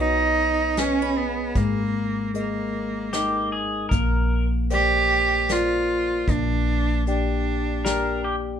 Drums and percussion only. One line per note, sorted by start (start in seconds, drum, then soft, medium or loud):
0.77 snare medium
0.77 closed hi-hat soft
1.55 kick medium
1.55 closed hi-hat soft
2.34 closed hi-hat soft
3.13 snare medium
3.13 closed hi-hat soft
3.91 kick medium
3.91 closed hi-hat soft
4.70 closed hi-hat medium
5.49 snare medium
5.49 closed hi-hat medium
6.28 kick medium
6.28 closed hi-hat soft
7.07 closed hi-hat soft
7.85 snare medium
7.85 closed hi-hat soft